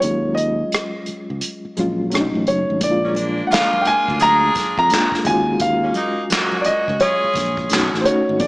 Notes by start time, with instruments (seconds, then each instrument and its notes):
Already playing: reed electric piano F#3 G#3 C#4 F4
0.00 fretless electric bass D#2, grand piano C#5, closed hi-hat
0.35 grand piano D#5, closed hi-hat
0.72 cross-stick, closed hi-hat
1.06 muted fretless electric bass stroke, closed hi-hat
1.30 fretless electric bass C#2
1.41 closed hi-hat
1.65 muted fretless electric bass stroke
1.77 fretless electric bass A#1, reed electric piano F#3 G#3 C#4 F4, cross-stick, closed hi-hat
2.10 fretless electric bass B1, reed electric piano F#3 A3 C#4, closed hi-hat
2.14 reed electric piano D4, cross-stick
2.21 reed electric piano D#4
2.35 fretless electric bass A1
2.47 fretless electric bass F#1, grand piano C#5, closed hi-hat
2.70 fretless electric bass G#1
2.81 fretless electric bass A#1, reed electric piano G#3 A#3 D4, grand piano D5, kick, closed hi-hat, muted conga, low conga
2.85 reed electric piano E4
2.91 reed electric piano F4
3.03 saxophone section F#3 A#3 C#4
3.15 saxophone section G#3 A#3 D4, closed hi-hat, high conga
3.47 saxophone section A#3 D4 F4, grand piano F#5
3.51 grand piano F5, snare, clap, closed hi-hat, high conga
3.73 high conga
3.81 grand piano G5, closed hi-hat
3.87 grand piano G#5, muted fretless electric bass stroke, muted conga
4.08 fretless electric bass D2, kick
4.20 saxophone section D4 F4 G#4, grand piano A#5, closed hi-hat, high conga
4.55 muted fretless electric bass stroke, kick, snare, closed hi-hat, high conga
4.78 fretless electric bass F2, grand piano A#5, kick
4.90 reed electric piano G#3 A#3 D4, snare, closed hi-hat
4.94 reed electric piano F4, clap
5.12 kick, snare
5.24 fretless electric bass D#2, reed electric piano G#3 C#4 F4, grand piano G#5, kick, closed hi-hat, low conga
5.29 reed electric piano F#4
5.60 fretless electric bass D#2, grand piano F5, kick, closed hi-hat, muted conga, low conga
5.82 saxophone section G#3 A#3 C#4
5.94 saxophone section G#3 A#3 D#4, closed hi-hat, muted conga, high conga
6.30 saxophone section A#3 C#4 F#4, snare, clap, closed hi-hat, high conga
6.52 high conga
6.61 grand piano D5, closed hi-hat
6.66 grand piano D#5, muted fretless electric bass stroke, muted conga
6.88 fretless electric bass C#2, kick
7.00 saxophone section C#4 F4 G#4, grand piano C#5, closed hi-hat, muted conga, high conga
7.24 muted fretless electric bass stroke
7.34 fretless electric bass A#1, kick, closed hi-hat, muted conga, high conga
7.38 snare
7.57 kick
7.69 fretless electric bass B1, reed electric piano A3 C#4 D#4, closed hi-hat, muted conga
7.73 reed electric piano F#4, snare, clap
7.94 fretless electric bass A1, snare
8.01 reed electric piano A3, grand piano C5
8.05 reed electric piano C#4 D#4 F#4, grand piano C#5, closed hi-hat, muted conga, low conga
8.29 fretless electric bass G#1
8.39 fretless electric bass A#1, reed electric piano A#3 D4 F4, grand piano D5, kick, closed hi-hat, low conga
8.43 reed electric piano G#4